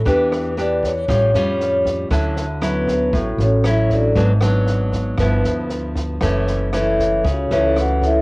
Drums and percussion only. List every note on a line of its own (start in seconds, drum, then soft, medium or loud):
0.06 kick medium
0.06 snare soft
0.32 cross-stick medium
0.32 snare soft
0.58 snare soft
0.83 kick soft
0.83 snare soft
1.08 kick medium
1.08 cross-stick medium
1.08 snare soft
1.34 snare soft
1.60 snare soft
1.85 kick soft
1.85 snare soft
2.11 kick medium
2.11 cross-stick medium
2.11 snare soft
2.36 snare soft
2.62 cross-stick medium
2.62 snare soft
2.88 kick soft
2.88 snare soft
3.13 kick medium
3.13 snare soft
3.39 snare soft
3.64 cross-stick medium
3.64 snare soft
3.90 kick soft
3.90 snare soft
4.15 kick medium
4.15 snare soft
4.41 cross-stick medium
4.41 snare soft
4.67 snare soft
4.92 kick soft
4.92 snare soft
5.18 kick medium
5.18 cross-stick medium
5.18 snare soft
5.44 snare soft
5.69 snare soft
5.95 kick soft
5.95 snare soft
6.21 kick medium
6.21 cross-stick medium
6.21 snare soft
6.47 snare soft
6.73 cross-stick medium
6.73 snare soft
6.99 kick soft
6.99 snare soft
7.25 kick medium
7.25 snare soft
7.51 snare soft
7.76 cross-stick medium
7.76 snare soft
8.02 kick soft
8.02 snare soft